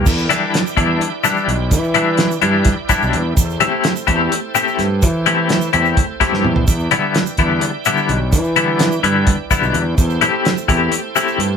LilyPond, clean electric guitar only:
\new Staff \with { instrumentName = "Clean electric guitar" } { \time 7/8 \key e \minor \tempo 4 = 127 r8 <e g d' e'>8 r8 <e g d' e'>8 r8 <e g d' e'>8 r8 | r8 <e g d' e'>8 r8 <e g d' e'>8 r8 <e g d' e'>8 r8 | r8 <a c' e' g'>8 r8 <a c' e' g'>8 r8 <a c' e' g'>8 r8 | r8 <a c' e' g'>8 r8 <a c' e' g'>8 r8 <a c' e' g'>8 r8 |
r8 <d g b e'>8 r8 <d g b e'>8 r8 <d g b e'>8 r8 | r8 <d g b e'>8 r8 <d g b e'>8 r8 <d g b e'>8 r8 | r8 <a c' e' g'>8 r8 <a c' e' g'>8 r8 <a c' e' g'>8 r8 | }